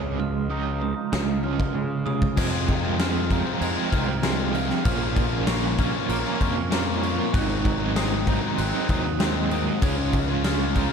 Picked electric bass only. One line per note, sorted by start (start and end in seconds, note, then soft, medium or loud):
0.00 0.92 C#2 loud
1.13 1.65 C#2 loud
1.75 2.27 C#3 medium
2.37 3.41 F2 medium
3.61 3.74 F2 loud
3.93 4.70 C2 medium
4.85 5.89 A#1 medium
6.09 6.22 A#1 medium
6.41 7.19 F2 medium
7.34 8.38 G#1 loud
8.58 8.71 G#1 medium
8.89 9.67 D#2 medium
9.82 10.87 C#2 medium